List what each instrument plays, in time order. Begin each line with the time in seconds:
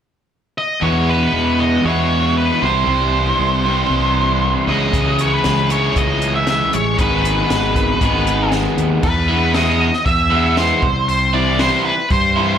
0.58 lead electric guitar D#5
0.81 overdriven electric guitar E2 B2 E3 G#3 B3 E4, fingered electric bass E2, lead electric guitar C#5
1.09 lead electric guitar B4
1.33 fingered electric bass E2
1.60 lead electric guitar D#5
1.84 overdriven electric guitar E2 B2 E3 G#3 B3 E4, fingered electric bass E2, lead electric guitar C#5
2.38 lead electric guitar B4
2.62 fingered electric bass C2, overdriven electric guitar C3 E3 G3 C4 E4, lead electric guitar C5
2.87 fingered electric bass C2, lead electric guitar C5
3.39 fingered electric bass C2
3.65 overdriven electric guitar C3 E3 G3 C4 E4
3.90 fingered electric bass C2
4.67 fingered electric bass C#2, overdriven electric guitar C#3 E3 G#3 C#4 E4, lead electric guitar D#5
4.93 fingered electric bass C#2, kick, closed hi-hat
5.19 lead electric guitar C#5, closed hi-hat
5.34 lead electric guitar B4
5.44 fingered electric bass C#2, snare, closed hi-hat
5.69 overdriven electric guitar C#3 E3 G#3 C#4 E4, lead electric guitar C#5, closed hi-hat
5.96 fingered electric bass C#2, lead electric guitar D#5, kick, closed hi-hat
6.22 closed hi-hat
6.35 lead electric guitar E5
6.47 lead electric guitar E5, snare, closed hi-hat
6.73 fingered electric bass A1, lead electric guitar C#5, closed hi-hat
6.98 fingered electric bass G#1, overdriven electric guitar G#2 D#3 G#3 B3 D#4 G#4, lead electric guitar B4, kick, closed hi-hat
7.25 closed hi-hat
7.50 fingered electric bass G#1, snare, closed hi-hat
7.76 kick, closed hi-hat
8.01 fingered electric bass G#1, overdriven electric guitar G#2 D#3 G#3 B3 D#4 G#4, kick, closed hi-hat
8.27 closed hi-hat
8.52 snare, closed hi-hat
8.78 fingered electric bass D#2, closed hi-hat
9.03 fingered electric bass E2, lead electric guitar B4, kick, crash
9.29 overdriven electric guitar E3 G#3 B3 E4
9.54 overdriven electric guitar E3 G#3 B3 E4, lead electric guitar D#5, snare, open hi-hat
9.93 snare
10.06 fingered electric bass E2, lead electric guitar E5, kick, open hi-hat
10.31 overdriven electric guitar E3 G#3 B3 E4
10.57 overdriven electric guitar E3 G#3 B3 E4, lead electric guitar C5, snare, open hi-hat
10.82 fingered electric bass C2, kick
11.09 lead electric guitar C5, open hi-hat
11.34 overdriven electric guitar E3 G3 C4 E4, lead electric guitar D5
11.59 overdriven electric guitar E3 G3 C4 E4, lead electric guitar C5, snare, open hi-hat
11.85 lead electric guitar B4
12.10 fingered electric bass G2, lead electric guitar C5, kick, open hi-hat
12.36 overdriven electric guitar E3 G3 C4 E4